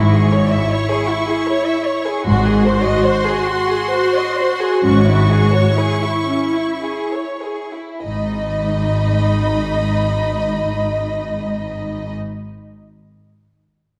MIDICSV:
0, 0, Header, 1, 6, 480
1, 0, Start_track
1, 0, Key_signature, 5, "minor"
1, 0, Tempo, 788436
1, 1386, Time_signature, 3, 2, 24, 8
1, 1874, Tempo, 881057
1, 2834, Tempo, 937500
1, 3314, Tempo, 1048951
1, 3794, Tempo, 1204819
1, 4274, Tempo, 1117318
1, 6835, End_track
2, 0, Start_track
2, 0, Title_t, "Violin section"
2, 0, Program_c, 0, 48
2, 0, Note_on_c, 0, 85, 95
2, 1358, Note_off_c, 0, 85, 0
2, 1385, Note_on_c, 0, 84, 110
2, 2812, Note_off_c, 0, 84, 0
2, 2839, Note_on_c, 0, 85, 100
2, 4159, Note_off_c, 0, 85, 0
2, 4281, Note_on_c, 0, 83, 88
2, 6040, Note_off_c, 0, 83, 0
2, 6835, End_track
3, 0, Start_track
3, 0, Title_t, "Violin section"
3, 0, Program_c, 1, 48
3, 0, Note_on_c, 1, 64, 86
3, 70, Note_off_c, 1, 64, 0
3, 84, Note_on_c, 1, 68, 85
3, 202, Note_off_c, 1, 68, 0
3, 209, Note_on_c, 1, 73, 87
3, 317, Note_on_c, 1, 76, 89
3, 323, Note_off_c, 1, 73, 0
3, 436, Note_off_c, 1, 76, 0
3, 445, Note_on_c, 1, 73, 93
3, 555, Note_on_c, 1, 68, 94
3, 558, Note_off_c, 1, 73, 0
3, 669, Note_on_c, 1, 64, 91
3, 672, Note_off_c, 1, 68, 0
3, 780, Note_on_c, 1, 68, 85
3, 789, Note_off_c, 1, 64, 0
3, 898, Note_on_c, 1, 73, 98
3, 904, Note_off_c, 1, 68, 0
3, 1016, Note_on_c, 1, 76, 92
3, 1023, Note_off_c, 1, 73, 0
3, 1133, Note_on_c, 1, 73, 90
3, 1141, Note_off_c, 1, 76, 0
3, 1254, Note_on_c, 1, 68, 86
3, 1259, Note_off_c, 1, 73, 0
3, 1373, Note_on_c, 1, 66, 102
3, 1379, Note_off_c, 1, 68, 0
3, 1490, Note_off_c, 1, 66, 0
3, 1494, Note_on_c, 1, 68, 93
3, 1615, Note_on_c, 1, 72, 97
3, 1621, Note_off_c, 1, 68, 0
3, 1736, Note_on_c, 1, 75, 101
3, 1743, Note_off_c, 1, 72, 0
3, 1860, Note_on_c, 1, 72, 109
3, 1868, Note_off_c, 1, 75, 0
3, 1977, Note_on_c, 1, 68, 97
3, 1983, Note_off_c, 1, 72, 0
3, 2100, Note_on_c, 1, 66, 98
3, 2101, Note_off_c, 1, 68, 0
3, 2211, Note_on_c, 1, 68, 84
3, 2222, Note_off_c, 1, 66, 0
3, 2331, Note_on_c, 1, 72, 97
3, 2338, Note_off_c, 1, 68, 0
3, 2459, Note_off_c, 1, 72, 0
3, 2463, Note_on_c, 1, 75, 86
3, 2583, Note_on_c, 1, 72, 92
3, 2586, Note_off_c, 1, 75, 0
3, 2708, Note_off_c, 1, 72, 0
3, 2710, Note_on_c, 1, 68, 85
3, 2833, Note_off_c, 1, 68, 0
3, 2834, Note_on_c, 1, 61, 91
3, 2942, Note_off_c, 1, 61, 0
3, 2946, Note_on_c, 1, 64, 85
3, 3067, Note_off_c, 1, 64, 0
3, 3069, Note_on_c, 1, 68, 88
3, 3185, Note_on_c, 1, 73, 84
3, 3190, Note_off_c, 1, 68, 0
3, 3311, Note_off_c, 1, 73, 0
3, 3315, Note_on_c, 1, 68, 89
3, 3428, Note_off_c, 1, 68, 0
3, 3429, Note_on_c, 1, 64, 81
3, 3545, Note_on_c, 1, 61, 83
3, 3546, Note_off_c, 1, 64, 0
3, 3667, Note_off_c, 1, 61, 0
3, 3668, Note_on_c, 1, 64, 72
3, 3794, Note_off_c, 1, 64, 0
3, 3797, Note_on_c, 1, 68, 74
3, 3911, Note_off_c, 1, 68, 0
3, 3916, Note_on_c, 1, 73, 67
3, 4036, Note_off_c, 1, 73, 0
3, 4038, Note_on_c, 1, 68, 63
3, 4159, Note_off_c, 1, 68, 0
3, 4165, Note_on_c, 1, 64, 60
3, 4278, Note_off_c, 1, 64, 0
3, 4280, Note_on_c, 1, 75, 84
3, 6039, Note_off_c, 1, 75, 0
3, 6835, End_track
4, 0, Start_track
4, 0, Title_t, "Viola section"
4, 0, Program_c, 2, 48
4, 0, Note_on_c, 2, 64, 94
4, 1385, Note_on_c, 2, 66, 113
4, 1388, Note_off_c, 2, 64, 0
4, 3293, Note_off_c, 2, 66, 0
4, 3314, Note_on_c, 2, 64, 86
4, 4157, Note_off_c, 2, 64, 0
4, 4278, Note_on_c, 2, 63, 85
4, 6039, Note_off_c, 2, 63, 0
4, 6835, End_track
5, 0, Start_track
5, 0, Title_t, "Cello section"
5, 0, Program_c, 3, 48
5, 0, Note_on_c, 3, 44, 110
5, 356, Note_off_c, 3, 44, 0
5, 1382, Note_on_c, 3, 44, 118
5, 1788, Note_off_c, 3, 44, 0
5, 2838, Note_on_c, 3, 44, 117
5, 3233, Note_off_c, 3, 44, 0
5, 4283, Note_on_c, 3, 44, 91
5, 6041, Note_off_c, 3, 44, 0
5, 6835, End_track
6, 0, Start_track
6, 0, Title_t, "Double bass section"
6, 0, Program_c, 4, 48
6, 0, Note_on_c, 4, 32, 101
6, 358, Note_off_c, 4, 32, 0
6, 1384, Note_on_c, 4, 32, 120
6, 1790, Note_off_c, 4, 32, 0
6, 2835, Note_on_c, 4, 32, 108
6, 3231, Note_off_c, 4, 32, 0
6, 4276, Note_on_c, 4, 32, 89
6, 6038, Note_off_c, 4, 32, 0
6, 6835, End_track
0, 0, End_of_file